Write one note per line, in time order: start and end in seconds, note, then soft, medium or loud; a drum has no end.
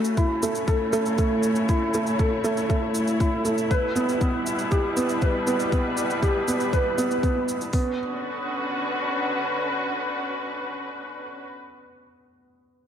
0.00 3.70 C#3 medium
0.00 0.43 A3 medium
0.00 3.70 A3 medium
0.00 7.74 E4 medium
0.00 0.70 F#4 medium
0.04 shaker soft
0.17 0.41 E4 medium
0.17 kick medium
0.17 shaker soft
0.23 4.40 C#5 medium
0.42 0.66 A3 medium
0.42 shaker medium
0.55 shaker soft
0.68 0.92 A4 medium
0.68 kick loud
0.68 shaker soft
0.93 1.07 A3 medium
0.93 shaker medium
1.06 shaker soft
1.18 1.42 A3 medium
1.18 kick medium
1.18 shaker soft
1.43 shaker medium
1.55 shaker soft
1.69 1.93 E4 medium
1.69 kick medium
1.69 shaker soft
1.94 2.18 A3 medium
1.94 shaker medium
2.07 shaker soft
2.19 2.43 A4 medium
2.19 kick medium
2.19 shaker soft
2.44 2.58 A3 medium
2.44 shaker medium
2.57 shaker soft
2.69 2.93 A3 medium
2.69 kick medium
2.69 shaker soft
2.94 shaker medium
3.07 shaker soft
3.20 3.44 E4 medium
3.20 kick medium
3.20 shaker soft
3.45 3.69 A3 medium
3.45 shaker medium
3.58 shaker soft
3.71 7.74 B2 medium
3.71 3.94 B4 medium
3.71 kick medium
3.71 shaker soft
3.94 7.75 G3 medium
3.94 4.10 B3 medium
3.94 shaker medium
4.09 shaker soft
4.21 4.45 B3 medium
4.21 kick medium
4.21 shaker soft
4.25 7.74 B4 medium
4.46 shaker medium
4.59 shaker soft
4.71 4.95 G4 medium
4.71 kick medium
4.71 shaker soft
4.97 5.20 B3 medium
4.97 shaker medium
5.09 shaker soft
5.22 5.46 B4 medium
5.22 kick medium
5.22 shaker soft
5.47 5.61 B3 medium
5.47 shaker medium
5.60 shaker soft
5.72 5.96 B3 medium
5.72 kick medium
5.72 shaker soft
5.97 shaker medium
6.10 shaker soft
6.22 6.46 G4 medium
6.22 kick medium
6.22 shaker soft
6.48 6.72 B3 medium
6.48 shaker medium
6.60 shaker soft
6.73 6.97 B4 medium
6.73 kick medium
6.73 shaker soft
6.98 7.12 B3 medium
6.98 shaker medium
7.11 shaker soft
7.23 7.47 B3 medium
7.23 kick medium
7.23 shaker soft
7.48 shaker medium
7.61 shaker soft
7.73 11.30 D3 medium
7.73 7.97 B3 medium
7.73 kick medium
7.73 open hi-hat medium
7.80 11.37 C#4 medium
7.89 11.46 F#4 medium
7.95 11.52 B4 medium